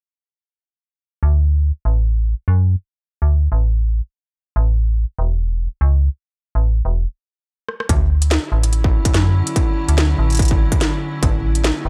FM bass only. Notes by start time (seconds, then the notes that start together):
1.23 D2
1.85 A1
2.48 F#2
3.22 D2
3.52 A1
4.56 A1
5.19 E1
5.81 C#2
6.55 A1
6.85 E1
7.89 D2
8.52 A1
9.14 F#2
9.89 D2
10.19 A1
11.23 A1
11.85 E1